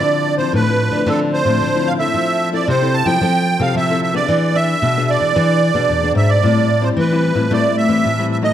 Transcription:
Already playing: nylon-string guitar F3 C4 E4, accordion D5
0.00 nylon-string guitar D3
0.38 nylon-string guitar F3 C4 E4, accordion C5
0.53 nylon-string guitar A2, accordion B4
0.67 nylon-string guitar F3 C4 E4
0.91 nylon-string guitar D3
1.06 nylon-string guitar D3 F3 C4 E4, accordion A4
1.34 accordion C5
1.45 nylon-string guitar A2 F3 C4 E4
1.60 nylon-string guitar A2 D3
1.75 nylon-string guitar F3 C4 E4
1.87 accordion F5
1.99 nylon-string guitar C4 E4 A4, accordion E5
2.14 nylon-string guitar F3
2.53 nylon-string guitar C4 E4 A4, accordion D5
2.68 nylon-string guitar C3, accordion C5
2.82 nylon-string guitar C4 E4 A4
2.94 accordion A5
3.06 nylon-string guitar F3 C4 E4 A4, accordion G5
3.21 nylon-string guitar F3 C4 E4 A4
3.59 nylon-string guitar C3 C4 E4 A4, accordion F5
3.74 nylon-string guitar C3 F3, accordion E5
3.90 nylon-string guitar C4 E4 A4
4.03 accordion E5
4.14 nylon-string guitar B3 D4 G#4, accordion D5
4.28 nylon-string guitar E3
4.54 nylon-string guitar B3 D4 G#4, accordion E5
4.82 nylon-string guitar B2
4.97 nylon-string guitar B3 D4 G#4
5.10 accordion D5
5.20 nylon-string guitar E3
5.35 nylon-string guitar E3 B3 D4 G#4
5.74 nylon-string guitar B2 B3 D4 G#4
5.89 nylon-string guitar E2 B2
6.03 nylon-string guitar B3 D4 G#4
6.15 nylon-string guitar G#2, accordion E5
6.29 accordion D5
6.42 nylon-string guitar A2 G3 C4 E4
6.81 nylon-string guitar G3 C4 E4, accordion C5
6.97 nylon-string guitar E3, accordion B4
7.11 nylon-string guitar G3 C4 E4
7.35 nylon-string guitar A2 G3 C4 E4
7.50 nylon-string guitar A2 G3 A3 C4 E4, accordion D5
7.77 accordion E5
7.88 nylon-string guitar E3 G3 C4 E4
8.04 nylon-string guitar A2 E3
8.18 nylon-string guitar G3 C4 E4
8.32 accordion E5
8.42 nylon-string guitar F#3 A3 D#4, accordion D#5

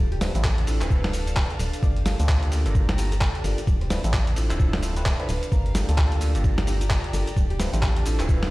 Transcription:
Already playing: fm bass D1, harp F4 A4, string section G4 D5
0.00 string section D4
0.12 harp G4, closed hi-hat
0.21 tine electric piano C4 D4 E4 F4 B4, string section A4, snare, open hi-hat, cabasa
0.35 fm bass A1, tine electric piano C4 D4 E4 F4 A4, closed hi-hat, cabasa
0.43 harp A4, string section F5, kick, clap, cabasa
0.58 closed hi-hat
0.67 tine electric piano C4 D4 E4 F4 A4, open hi-hat, cabasa
0.81 fm bass D1, tine electric piano C4 D4 E4 F4 A4, harp B4, clap, closed hi-hat, cabasa
0.90 tine electric piano C4 D4 E4 F4 A4, kick, cabasa
1.04 snare, open hi-hat
1.13 open hi-hat, cabasa
1.27 closed hi-hat, cabasa
1.36 kick, clap, cabasa
1.50 harp A4, closed hi-hat
1.59 fm bass D1, open hi-hat, cabasa
1.73 closed hi-hat, cabasa
1.83 fm bass G1, string section G4, harp D5, kick, cabasa
1.96 string section D5, closed hi-hat
2.06 tine electric piano A#3 D4 F4 G4 A4, snare, open hi-hat, cabasa
2.20 fm bass D2, tine electric piano A#3 D4 F4 G4 A4, harp C5, closed hi-hat, cabasa
2.29 kick, clap, cabasa
2.42 string section A#5, closed hi-hat
2.52 tine electric piano A#3 D4 F4 G4 A4, open hi-hat, cabasa
2.66 fm bass G1, tine electric piano A#3 D4 F4 G4 A4, harp C5, closed hi-hat, cabasa
2.75 kick, cabasa
2.89 snare, closed hi-hat
2.98 tine electric piano A#3 D4 F4 G4 A4, open hi-hat, cabasa
3.12 harp A4, closed hi-hat, cabasa
3.21 kick, clap, cabasa
3.35 closed hi-hat
3.44 fm bass G1, tine electric piano A#3 D4 F4 G4 A4, harp D5, open hi-hat, cabasa
3.58 closed hi-hat, cabasa
3.67 fm bass D1, string section D4, kick, cabasa
3.81 string section A4, harp C5, closed hi-hat
3.90 tine electric piano C4 D4 E4 F4 B4, snare, open hi-hat, cabasa
4.04 fm bass A1, tine electric piano C4 D4 E4 F4 A4, closed hi-hat, cabasa
4.13 harp D5, kick, clap, cabasa
4.27 closed hi-hat
4.36 tine electric piano C4 D4 E4 F4 A4, open hi-hat, cabasa
4.50 fm bass D1, tine electric piano C4 D4 E4 F4 A4, harp E5, string section F5, clap, closed hi-hat, cabasa
4.60 tine electric piano C4 D4 E4 F4 A4, kick, cabasa
4.73 snare, open hi-hat
4.83 tine electric piano C4 D4 E4 F4 A4, open hi-hat, cabasa
4.96 tine electric piano C4 D4 E4 F4 B4, closed hi-hat, cabasa
5.06 kick, clap, cabasa
5.20 tine electric piano C4 D4 E4 F4 A4, harp B4, closed hi-hat
5.29 fm bass D1, open hi-hat, cabasa
5.43 closed hi-hat, cabasa
5.52 fm bass G1, string section G4, harp A#4, kick, cabasa
5.66 closed hi-hat
5.75 tine electric piano A#3 D4 F4 G4 A4, snare, open hi-hat, cabasa
5.79 string section D5
5.89 fm bass D2, tine electric piano A#3 D4 F4 G4 A4, harp A4, closed hi-hat, cabasa
5.98 kick, clap, cabasa
6.12 closed hi-hat
6.21 tine electric piano A#3 D4 F4 G4 A4, open hi-hat, cabasa
6.35 fm bass G1, tine electric piano A#3 D4 F4 G4 A4, harp A4, string section A#5, closed hi-hat, cabasa
6.44 kick, cabasa
6.58 snare, closed hi-hat
6.67 tine electric piano A#3 D4 F4 G4 A4, open hi-hat, cabasa
6.81 harp F4, closed hi-hat, cabasa
6.90 kick, clap, cabasa
7.04 closed hi-hat
7.13 fm bass G1, tine electric piano A#3 D4 F4 G4 A4, harp A4, open hi-hat, cabasa
7.27 closed hi-hat, cabasa
7.37 fm bass D1, string section D4, kick, cabasa
7.50 harp G4, closed hi-hat
7.60 tine electric piano C4 D4 E4 F4 B4, snare, open hi-hat, cabasa
7.73 fm bass A1, tine electric piano C4 D4 E4 F4 A4, closed hi-hat, cabasa
7.83 harp A4, kick, clap, cabasa
7.96 closed hi-hat
8.06 tine electric piano C4 D4 E4 F4 A4, string section A4, open hi-hat, cabasa
8.20 fm bass D1, tine electric piano C4 D4 E4 F4 A4, harp B4, string section F5, clap, closed hi-hat, cabasa
8.29 tine electric piano C4 D4 E4 F4 A4, kick, cabasa
8.43 snare, open hi-hat

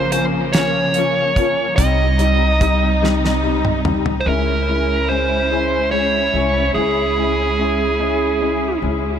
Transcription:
Already playing: upright bass A#1, string section C#3 F3 A#3, lead electric guitar C5
0.12 felt piano F3 A#3 C#4, lead electric guitar C5, closed hi-hat
0.53 felt piano F3 A#3 C#4, lead electric guitar C#5, snare, closed hi-hat
0.94 felt piano F3 A#3 C#4, closed hi-hat
1.36 felt piano F3 A#3 C#4, kick, closed hi-hat
1.76 upright bass C2, felt piano G3 C4 D#4, string section D#4, lead electric guitar D#5, kick, closed hi-hat
1.80 string section C3 G3
2.19 felt piano G3 C4 D#4, closed hi-hat
2.60 felt piano G3 C4 D#4, kick, closed hi-hat
3.02 felt piano G3 C4 D#4, snare
3.25 snare
3.43 felt piano G3 C4 D#4
3.65 mid tom
3.85 felt piano G3 C4 D#4, mid tom
4.06 floor tom
4.21 lead electric guitar C5
4.25 upright bass C#2, felt piano G#3 C#4 E4, string section G#3 C#4 E4, lead electric guitar A#4
4.68 felt piano G#3 C#4 E4
5.08 felt piano G#3 C#4 E4, lead electric guitar C5
5.50 felt piano G#3 C#4 E4
5.91 felt piano G#3 C#4 E4, lead electric guitar C#5
6.33 upright bass C2, felt piano G#3 C#4 E4
6.74 upright bass C#2, felt piano G#3 C#4 E4, lead electric guitar G#4
7.17 felt piano G#3 C#4 E4
7.58 felt piano G#3 C#4 E4
7.99 felt piano G#3 C#4 E4
8.41 felt piano G#3 C#4 E4
8.82 upright bass C#2, felt piano G#3 C#4 E4

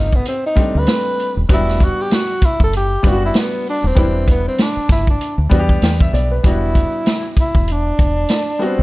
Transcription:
Already playing: fingered electric bass G1, tenor saxophone D#4
0.13 tenor saxophone B3, kick
0.25 tenor saxophone C4, closed hi-hat
0.47 tenor saxophone D#4
0.55 upright piano G3 A3 C4 D4, kick, closed hi-hat
0.75 fingered electric bass D2, tenor saxophone B4
0.87 snare, closed hi-hat
1.19 closed hi-hat
1.37 fingered electric bass D#1
1.49 fingered electric bass E1, upright piano F#3 B3 D4 F#4, kick, closed hi-hat
1.53 upright piano G3, tenor saxophone E4
1.68 snare
1.80 tenor saxophone F#4, kick, closed hi-hat
2.02 tenor saxophone G4
2.11 tenor saxophone F#4, snare, closed hi-hat
2.42 tenor saxophone E4, kick, closed hi-hat
2.60 fingered electric bass F#1, tenor saxophone A4, kick
2.73 tenor saxophone G4, closed hi-hat
3.03 fingered electric bass F#1, upright piano G3 B3 D4 F4, kick, closed hi-hat
3.08 tenor saxophone F#4
3.12 upright piano F#4
3.26 tenor saxophone E4
3.34 snare, closed hi-hat
3.39 tenor saxophone B3
3.66 tenor saxophone D4, open hi-hat
3.84 fingered electric bass D#1, tenor saxophone C4
3.95 fingered electric bass E1, upright piano G3 D4 E4 B4, kick, closed hi-hat
4.28 tenor saxophone B3, kick, closed hi-hat
4.48 tenor saxophone C4
4.58 tenor saxophone D4, snare, closed hi-hat
4.77 muted fingered electric bass stroke
4.89 fingered electric bass G1, tenor saxophone E4, kick, snare, closed hi-hat
5.07 tenor saxophone D4, kick
5.21 closed hi-hat
5.38 fingered electric bass D2
5.49 fingered electric bass E2, upright piano G3 B3 D4 F#4, kick, closed hi-hat
5.59 upright piano G4
5.69 kick
5.82 fingered electric bass E2, upright piano G5, snare, closed hi-hat
6.00 upright piano E5, kick
6.13 fingered electric bass B1, upright piano D5, closed hi-hat
6.31 upright piano B4
6.43 fingered electric bass E1, upright piano G3 B3 D4 F#4, tenor saxophone E4, kick, closed hi-hat
6.75 kick, closed hi-hat
7.06 snare, closed hi-hat
7.37 tenor saxophone E4, kick, closed hi-hat
7.55 fingered electric bass E1, kick
7.68 closed hi-hat
7.72 tenor saxophone D4
7.99 fingered electric bass E1, kick, closed hi-hat
8.29 snare, closed hi-hat
8.59 upright piano G3 B3 D4 F#4, closed hi-hat
8.64 tenor saxophone C4
8.79 fingered electric bass C#2

